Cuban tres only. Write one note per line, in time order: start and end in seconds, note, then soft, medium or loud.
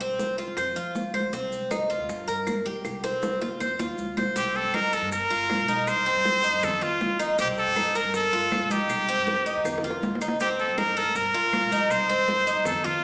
0.01 0.37 C4 medium
0.38 0.57 F4 medium
0.57 0.76 C5 medium
0.76 1.13 F4 medium
1.14 1.32 C5 medium
1.33 1.70 C4 medium
1.71 1.89 D#4 medium
1.90 2.27 F4 medium
2.28 2.64 A#4 medium
2.66 3.02 G4 medium
3.04 3.40 C4 medium
3.41 3.60 F4 medium
3.60 3.79 C5 medium
3.79 4.16 F4 medium
4.17 4.35 C5 medium
4.36 4.73 C4 medium
4.74 4.92 D#4 medium
4.93 5.29 A#4 medium
5.30 5.67 F4 medium
5.68 6.05 D#4 medium
6.06 6.43 C4 medium
6.44 6.80 D#4 medium
6.81 7.18 F4 medium
7.19 7.38 D#4 medium
7.39 7.75 C4 medium
7.76 7.95 D#4 medium
7.95 8.32 A#4 medium
8.33 8.69 F4 medium
8.71 9.07 D#4 medium
9.09 9.45 C4 medium
9.46 9.83 D#4 medium
9.84 10.20 F4 medium
10.21 10.40 D#4 medium
10.40 10.77 C4 medium
10.78 10.96 D#4 medium
10.97 11.33 A#4 medium
11.34 11.71 F4 medium
11.72 12.08 D#4 medium
12.09 12.46 C4 medium
12.47 12.83 D#4 medium
12.84 13.04 F4 medium